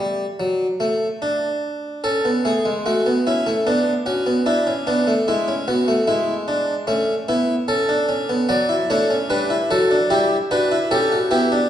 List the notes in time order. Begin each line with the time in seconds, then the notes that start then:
0.00 G3
0.40 F#3
0.80 A3
1.22 D4
2.04 C#4 A4
2.25 B3
2.45 A3 G#4
2.65 G#3
2.86 A3 F#4
3.06 B3
3.27 C#4 E4
3.47 A3
3.67 B3 D4
4.06 C#4 F#4
4.26 B3
4.46 D4 E4
4.67 C#4
4.87 B3 D4
5.07 A3
5.28 G#3 E4
5.48 C#4
5.68 B3 F#4
5.88 A3
6.08 G#3 E4
6.48 D4
6.87 A3 C#4
7.29 B3 E4
7.68 C#4 A4
7.89 D4
8.09 C#4
8.29 B3
8.49 F#3 F#4 D5
8.69 E4
8.90 A3 D4 C#5
9.10 C#4
9.30 G3 D4 B4
9.50 E4
9.71 F#3 F#4 A4
9.91 D4
10.10 G3 E4 G4
10.51 D4 F#4 B4
10.72 E4
10.91 C#4 G4 A4
11.12 F#4
11.31 B3 E4 G4
11.52 D4